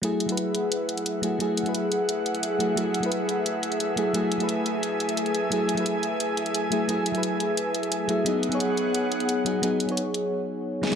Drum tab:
HH |x-xxx-x-x-xxx-x-|x-xxx-x-x-xxx-x-|x-xxx-x-x-xxx-x-|x-xxx-x-x-xxxxx-|
SD |----------------|----------------|----------------|----------------|

HH |x-xxx-x-x-xxx-x-|x-xxx-x-x-xxx-x-|x-xxx-x-x-xxx-x-|x-xxx-x---------|
SD |----------------|----------------|----------------|--------------oo|